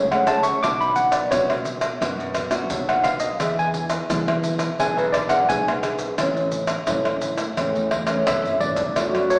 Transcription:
Already playing: fingered electric bass C#2, nylon-string guitar C#3, tine electric piano C#5
0.11 nylon-string guitar A3 C#4 G#4, tine electric piano F#5, pandeiro, tamborim, maracas
0.27 nylon-string guitar A3 C#4 G#4, tine electric piano A5, pandeiro, tamborim, maracas
0.43 tine electric piano C#6, pandeiro, maracas
0.63 fingered electric bass B1, nylon-string guitar B2 B3 D4 F#4, tine electric piano D6, pandeiro, tamborim, maracas, surdo
0.81 tine electric piano B5, pandeiro, maracas
0.96 tine electric piano F#5, pandeiro, maracas
1.12 tine electric piano D5, pandeiro, tamborim, maracas
1.31 nylon-string guitar F#2 B3 D4 F#4, fingered electric bass B2, tine electric piano C#5, pandeiro, tamborim, maracas, surdo
1.50 pandeiro, tamborim, maracas
1.65 pandeiro, maracas
1.81 pandeiro, tamborim, maracas
2.01 fingered electric bass F#2, nylon-string guitar B2 B3 D4 F#4, pandeiro, tamborim, maracas, surdo
2.19 fingered electric bass F#2, pandeiro, maracas
2.35 pandeiro, tamborim, maracas, surdo
2.51 nylon-string guitar B3 D4 F#4, pandeiro, tamborim, maracas
2.70 fingered electric bass B1, nylon-string guitar F#2, pandeiro, maracas, surdo
2.89 tine electric piano F#5, pandeiro, tamborim, maracas
3.04 nylon-string guitar B3 D4 F#4, tine electric piano F5, pandeiro, tamborim, maracas
3.20 tine electric piano D#5, pandeiro, maracas
3.39 fingered electric bass E2, nylon-string guitar E3 B3 D4 G#4, tine electric piano E5, pandeiro, tamborim, maracas, surdo
3.59 tine electric piano G#5, pandeiro, maracas
3.74 pandeiro, maracas
3.90 pandeiro, tamborim, maracas
4.09 nylon-string guitar B2 B3 D4 G#4, fingered electric bass E3, pandeiro, tamborim, maracas, surdo
4.28 pandeiro, tamborim, maracas
4.44 pandeiro, maracas
4.59 pandeiro, tamborim, maracas
4.79 fingered electric bass B1, nylon-string guitar E3 B3 D4 G#4, tine electric piano G#5, pandeiro, tamborim, maracas, surdo
4.97 fingered electric bass B1, tine electric piano B4, pandeiro, maracas
5.12 tine electric piano D5, pandeiro, tamborim, maracas, surdo
5.29 nylon-string guitar B3 D4 G#4, tine electric piano F#5, pandeiro, tamborim, maracas
5.48 fingered electric bass B1, nylon-string guitar B2 B3 D4 G#4, tine electric piano G#5, pandeiro, maracas, surdo
5.68 pandeiro, tamborim, maracas
5.82 nylon-string guitar B3 D4 G#4, pandeiro, tamborim, maracas
5.99 pandeiro, maracas
6.18 fingered electric bass A1, nylon-string guitar A2 E3 A3 C#4, pandeiro, tamborim, maracas, surdo
6.37 pandeiro, maracas
6.52 pandeiro, maracas
6.67 pandeiro, tamborim, maracas
6.87 fingered electric bass A2, nylon-string guitar E3 A3 C#4, pandeiro, tamborim, maracas, surdo
7.05 pandeiro, tamborim, maracas
7.21 pandeiro, maracas
7.38 pandeiro, tamborim, maracas
7.57 fingered electric bass E2, nylon-string guitar A2 E3 A3 C#4, pandeiro, tamborim, maracas, surdo
7.75 fingered electric bass E2, pandeiro, maracas
7.91 pandeiro, tamborim, surdo
8.07 nylon-string guitar E3 A3 C#4, pandeiro, tamborim, maracas
8.27 fingered electric bass F#1, nylon-string guitar E3, tine electric piano E5, pandeiro, tamborim, maracas, surdo
8.45 fingered electric bass G#1, surdo, pandeiro, maracas
8.60 fingered electric bass A1, nylon-string guitar E3 A3 C#4, tine electric piano D5, surdo, pandeiro
8.76 fingered electric bass B1, pandeiro, maracas, surdo
8.96 fingered electric bass B1, nylon-string guitar B2 F#3 A3 D4, flute F#4, pandeiro, tamborim, maracas, surdo
9.15 fingered electric bass F#2, pandeiro, tamborim, maracas
9.30 tine electric piano C#5, pandeiro, maracas, surdo

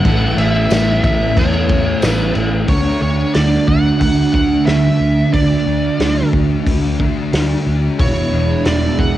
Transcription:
Already playing: lead electric guitar F#5
0.05 fingered electric bass A1, distorted electric guitar A2 E3 A3, ambient pad B3 C#4 A4, overdriven electric guitar C#4 A4, kick, crash
0.37 fingered electric bass A1, distorted electric guitar E3 A3, lead electric guitar E5, crash
0.70 fingered electric bass A1, distorted electric guitar A2 E3 A3, snare, tambourine, crash
1.04 fingered electric bass A1, lead electric guitar E5, kick, crash
1.36 fingered electric bass E2, distorted electric guitar A2 E3 A3, overdriven electric guitar C#4 A4, lead electric guitar C#5, kick, crash
1.69 kick, crash
2.02 fingered electric bass A1, distorted electric guitar A2 E3 A3, lead electric guitar B4, snare, tambourine, crash
2.35 fingered electric bass A1, crash
2.68 fingered electric bass D2, distorted electric guitar D3 A3 D4, ambient pad D3 F#4, overdriven electric guitar F#4, lead electric guitar C#5, kick, open hi-hat
3.02 fingered electric bass D2, distorted electric guitar A3 D4, lead electric guitar C#5
3.34 fingered electric bass D2, distorted electric guitar D3 A3 D4, lead electric guitar D5, snare, open hi-hat
3.67 fingered electric bass D2, lead electric guitar F#5, kick
4.00 fingered electric bass D2, lead electric guitar F#5, kick, open hi-hat
4.33 fingered electric bass D2, distorted electric guitar A3 D4, lead electric guitar F#5, kick
4.66 fingered electric bass D2, distorted electric guitar D3 A3 D4, lead electric guitar E5, snare, open hi-hat
5.00 fingered electric bass D2, distorted electric guitar A3 D4
5.33 fingered electric bass D2, distorted electric guitar D3 A3 D4, lead electric guitar D5, kick, open hi-hat
5.66 fingered electric bass D2, distorted electric guitar A3 D4
5.99 fingered electric bass D2, distorted electric guitar D3 A3 D4, snare, open hi-hat
6.33 fingered electric bass D2, kick
6.66 fingered electric bass D2, kick, open hi-hat
6.99 distorted electric guitar A3 D4, kick
7.32 fingered electric bass D2, distorted electric guitar D3 A3 D4, snare, open hi-hat
7.66 fingered electric bass D2, distorted electric guitar A3 D4
7.99 fingered electric bass E1, distorted electric guitar E2 B2 E3, ambient pad E3 D4 G#4, overdriven electric guitar G#3 D4 E4, lead electric guitar C#5, kick, open hi-hat
8.32 fingered electric bass E1, distorted electric guitar B2 E3
8.65 fingered electric bass E1, distorted electric guitar E2 B2 E3, lead electric guitar D5, snare, open hi-hat
8.99 fingered electric bass E1, lead electric guitar F#5, kick

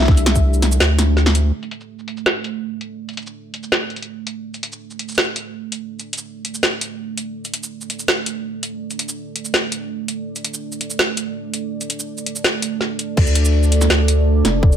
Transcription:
Already playing: sub bass C2, analog synth pad A3 D4 G4 E5
0.02 snare
0.05 kick, snare
0.08 snare
0.11 snare
0.14 snare, closed hi-hat, shaker
0.26 snare, closed hi-hat
0.35 kick, shaker
0.54 shaker
0.62 snare, closed hi-hat
0.72 shaker
0.80 sub bass D2, snare
0.99 snare, closed hi-hat
1.17 snare
1.26 snare
1.35 closed hi-hat
1.54 analog synth pad A3
1.63 closed hi-hat, shaker
1.71 closed hi-hat
1.78 analog synth pad D4 A4, shaker
1.99 shaker
2.08 closed hi-hat
2.17 analog synth pad D5, shaker
2.26 snare
2.44 closed hi-hat
2.81 closed hi-hat
3.09 closed hi-hat, shaker
3.13 shaker
3.17 closed hi-hat, shaker
3.22 shaker
3.27 shaker
3.54 closed hi-hat
3.63 shaker
3.72 snare
3.90 closed hi-hat
3.96 closed hi-hat
4.03 closed hi-hat
4.27 closed hi-hat
4.54 closed hi-hat, shaker
4.63 closed hi-hat
4.72 shaker
4.91 shaker
4.99 closed hi-hat
5.09 shaker
5.12 shaker
5.15 snare, shaker
5.18 shaker
5.24 shaker
5.36 closed hi-hat
5.72 closed hi-hat
6.00 closed hi-hat, shaker
6.13 closed hi-hat
6.18 shaker
6.45 closed hi-hat
6.54 shaker
6.63 snare
6.81 closed hi-hat
7.18 closed hi-hat
7.45 closed hi-hat, shaker
7.54 closed hi-hat
7.63 shaker
7.81 shaker
7.90 closed hi-hat
7.99 shaker
8.08 snare
8.26 closed hi-hat
8.63 closed hi-hat
8.91 closed hi-hat, shaker
8.99 closed hi-hat
9.09 shaker
9.36 closed hi-hat
9.45 shaker
9.54 snare
9.72 closed hi-hat
10.08 closed hi-hat
10.36 closed hi-hat, shaker
10.44 closed hi-hat
10.54 shaker
10.72 shaker
10.81 closed hi-hat
10.90 shaker
10.99 snare
11.17 closed hi-hat
11.54 closed hi-hat
11.81 closed hi-hat, shaker
11.90 closed hi-hat
11.99 shaker
12.18 shaker
12.26 closed hi-hat
12.36 shaker
12.44 snare
12.62 closed hi-hat
12.81 snare
12.99 closed hi-hat
13.17 sub bass D2, kick, crash
13.27 shaker
13.35 closed hi-hat
13.45 shaker
13.63 shaker
13.72 closed hi-hat
13.81 snare, shaker
13.90 sub bass D2, snare
14.08 closed hi-hat
14.45 sub bass F1, snare, closed hi-hat
14.63 kick
14.72 shaker

